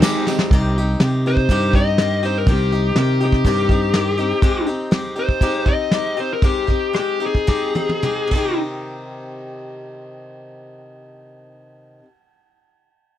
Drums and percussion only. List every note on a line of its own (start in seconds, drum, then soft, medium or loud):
0.02 snare loud
0.02 tambourine medium
0.02 crash medium
0.16 tambourine soft
0.27 snare medium
0.27 tambourine medium
0.39 snare medium
0.51 kick loud
0.51 open hi-hat soft
1.00 snare loud
1.00 open hi-hat soft
1.37 kick medium
1.49 kick medium
1.49 open hi-hat soft
1.73 kick medium
1.98 snare medium
1.98 open hi-hat soft
2.47 kick loud
2.47 open hi-hat medium
2.95 snare loud
2.95 open hi-hat soft
3.32 kick medium
3.32 snare soft
3.45 kick medium
3.45 open hi-hat soft
3.69 kick medium
3.93 snare medium
3.93 open hi-hat soft
4.42 kick loud
4.42 open hi-hat soft
4.92 snare loud
4.92 open hi-hat soft
5.29 kick medium
5.41 kick medium
5.41 open hi-hat soft
5.66 kick medium
5.91 snare medium
5.91 open hi-hat soft
6.42 kick loud
6.42 open hi-hat soft
6.68 kick medium
6.94 cross-stick medium
6.94 open hi-hat soft
7.35 kick medium
7.48 kick medium
7.48 snare soft
7.75 high tom medium
7.89 high tom soft
8.03 mid tom medium
8.31 kick medium
8.31 ride medium